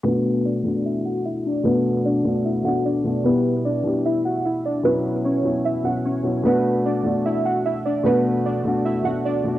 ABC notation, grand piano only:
X:1
M:4/4
L:1/16
Q:1/4=150
K:Bm
V:1 name="Grand piano"
[B,,A,DF]4 z2 [B,,A,DF]4- [B,,A,DF] z4 z | [B,,A,DF]4 z2 [B,,A,DF]2 z2 [B,,A,DF]2 z2 [B,,A,DF]2 | [B,,G,EG]4 z2 [B,,G,EG]4- [B,,G,EG] z4 z | [B,,F,CE]4 z2 [B,,F,CE]2 z2 [B,,F,CE]2 z2 [B,,F,CE]2 |
[B,,A,DF]4 z2 [B,,A,DF]4- [B,,A,DF] z4 z | [B,,A,DF]4 z2 [B,,A,DF]2 z2 [B,,A,DF]2 z2 [B,,A,DF]2 |]